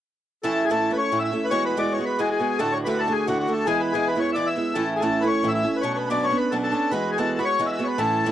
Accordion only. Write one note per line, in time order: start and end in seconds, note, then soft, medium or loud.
0.44 0.65 A4 medium
0.65 0.70 G#4 medium
0.71 0.92 A4 medium
0.93 0.98 B4 medium
0.98 1.19 C#5 medium
1.19 1.23 E5 medium
1.24 1.46 E5 medium
1.44 1.51 B4 medium
1.51 1.64 C#5 loud
1.65 1.79 B4 medium
1.78 1.93 D5 medium
1.93 2.05 C#5 medium
2.05 2.20 B4 medium
2.19 2.29 G#4 medium
2.31 2.59 G#4 medium
2.58 2.74 A4 medium
2.72 2.78 C#5 medium
2.84 3.00 B4 medium
2.99 3.13 A4 medium
3.11 3.27 G#4 medium
3.27 3.38 F#4 medium
3.39 3.53 F#4 medium
3.53 3.67 A4 medium
3.66 3.81 G#4 loud
3.79 3.94 B4 medium
3.92 4.08 G#4 medium
4.07 4.20 B4 medium
4.20 4.30 C#5 medium
4.32 4.48 D5 medium
4.32 4.36 E5 medium
4.47 4.75 E5 medium
4.74 4.94 A4 medium
4.95 5.02 G#4 medium
5.00 5.23 A4 medium
5.21 5.28 B4 medium
5.27 5.50 C#5 medium
5.48 5.53 E5 medium
5.54 5.77 E5 medium
5.76 5.82 B4 medium
5.81 5.92 C#5 medium
5.94 6.09 B4 medium
5.94 5.98 C#5 medium
6.10 6.25 D5 medium
6.24 6.37 C#5 medium
6.37 6.52 B4 medium
6.51 6.57 A4 medium
6.63 6.92 A4 medium
6.91 7.11 B4 medium
7.12 7.19 G#4 medium
7.18 7.40 A4 medium
7.39 7.45 B4 medium
7.45 7.67 C#5 loud
7.66 7.71 E5 medium
7.73 7.84 E5 medium
7.84 7.99 B4 medium
7.84 7.87 C#5 medium
7.99 8.32 A4 medium